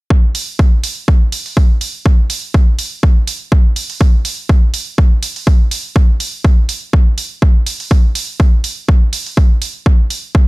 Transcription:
0.10 kick loud
0.35 open hi-hat loud
0.59 kick loud
0.84 open hi-hat loud
1.08 kick loud
1.32 open hi-hat loud
1.46 open hi-hat medium
1.57 kick loud
1.81 open hi-hat medium
2.06 kick loud
2.30 open hi-hat loud
2.54 kick loud
2.79 open hi-hat loud
3.03 kick loud
3.27 open hi-hat loud
3.52 kick loud
3.76 open hi-hat medium
3.90 open hi-hat medium
4.01 kick loud
4.25 open hi-hat loud
4.49 kick loud
4.74 open hi-hat loud
4.98 kick loud
5.23 open hi-hat loud
5.36 open hi-hat medium
5.47 kick loud
5.71 open hi-hat loud
5.96 kick loud
6.20 open hi-hat loud
6.45 kick loud
6.69 open hi-hat loud
6.93 kick loud
7.18 open hi-hat loud
7.42 kick loud
7.66 open hi-hat loud
7.80 open hi-hat medium
7.91 kick loud
8.15 open hi-hat loud
8.40 kick loud
8.64 open hi-hat loud
8.89 kick loud
9.13 open hi-hat loud
9.26 open hi-hat medium
9.37 kick loud
9.62 open hi-hat medium
9.86 kick loud
10.10 open hi-hat medium
10.35 kick loud

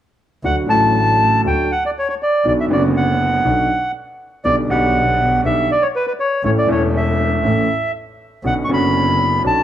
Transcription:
0.44 0.65 D2 medium
0.44 0.65 D2 soft
0.44 0.65 D3 soft
0.44 0.66 F#3 soft
0.44 0.65 A3 soft
0.44 0.65 F#4 soft
0.44 0.56 F#5 medium
0.67 1.40 A1 medium
0.67 1.41 A1 medium
0.67 1.41 A2 medium
0.67 1.39 D3 medium
0.67 1.40 F#3 medium
0.67 1.41 A3 medium
0.67 1.41 F#4 medium
0.67 1.41 A5 medium
1.44 1.65 D2 soft
1.44 1.66 D2 soft
1.44 1.66 D3 soft
1.44 1.65 F#3 soft
1.44 1.66 A3 soft
1.44 1.66 F#4 soft
1.44 1.71 G5 medium
1.72 1.84 F#5 medium
1.85 1.90 D5 medium
1.98 2.08 C#5 medium
2.09 2.15 C#5 medium
2.22 2.46 D5 medium
2.44 2.66 B1 medium
2.44 2.66 B1 soft
2.44 2.66 B2 soft
2.44 2.66 D3 soft
2.44 2.66 F#3 soft
2.44 2.66 B3 soft
2.44 2.66 F#4 soft
2.44 2.53 D5 medium
2.60 2.65 E5 medium
2.68 3.41 F#1 medium
2.68 3.41 F#2 medium
2.68 3.40 D3 medium
2.68 3.41 F#3 medium
2.68 3.42 B3 medium
2.72 3.42 F#4 medium
2.72 2.83 D5 medium
2.97 3.92 F#5 medium
3.44 3.66 B1 soft
3.44 3.66 B2 soft
3.44 3.66 D3 soft
3.44 3.66 F#3 soft
3.44 3.66 B3 soft
3.44 3.66 F#4 soft
4.45 4.65 B1 soft
4.45 4.66 B1 medium
4.45 4.66 B2 soft
4.45 4.65 D3 soft
4.45 4.65 G3 soft
4.45 4.66 B3 soft
4.45 4.66 G4 soft
4.45 4.56 D5 medium
4.68 5.41 B1 medium
4.68 5.41 B2 medium
4.68 5.40 D3 medium
4.68 5.41 G3 medium
4.68 5.41 B3 medium
4.68 5.42 G4 medium
4.68 5.41 F#5 medium
5.43 5.65 B1 medium
5.43 5.65 B2 soft
5.43 5.65 D3 soft
5.43 5.65 G3 soft
5.43 5.65 B3 soft
5.43 5.66 G4 soft
5.43 5.71 E5 medium
5.71 5.83 D5 medium
5.82 5.88 C#5 medium
5.96 6.06 B4 medium
6.07 6.13 B4 medium
6.20 6.43 C#5 medium
6.43 6.65 A1 medium
6.43 6.65 A1 soft
6.43 6.65 A2 soft
6.43 6.65 E3 soft
6.43 6.65 A3 soft
6.43 6.65 C#4 soft
6.43 6.65 A4 soft
6.43 6.51 C#5 medium
6.58 6.69 D5 medium
6.67 7.40 E1 medium
6.67 7.40 E2 medium
6.67 7.39 E3 medium
6.67 7.40 A3 medium
6.67 7.40 C#4 medium
6.67 7.41 A4 medium
6.72 6.82 C#5 medium
6.97 7.92 E5 medium
7.43 7.65 A1 medium
7.43 7.65 A1 soft
7.43 7.65 A2 soft
7.43 7.65 E3 soft
7.43 7.65 A3 soft
7.43 7.65 C#4 soft
7.43 7.66 A4 soft
8.43 8.65 B1 soft
8.43 8.65 B2 soft
8.43 8.65 D3 soft
8.43 8.66 B3 soft
8.43 8.65 C#4 soft
8.43 8.66 F#4 soft
8.43 8.54 F#5 medium
8.64 9.40 D3 medium
8.64 8.70 C#6 medium
8.69 9.40 F#1 medium
8.69 9.41 F#1 medium
8.69 9.41 F#2 medium
8.69 9.40 B3 medium
8.69 9.41 C#4 medium
8.69 9.42 F#4 medium
8.73 9.43 B5 medium
9.44 9.63 B1 soft
9.44 9.63 B2 soft
9.44 9.63 D3 soft
9.44 9.63 B3 soft
9.44 9.63 C#4 soft
9.44 9.63 F#4 soft
9.44 9.63 A5 medium

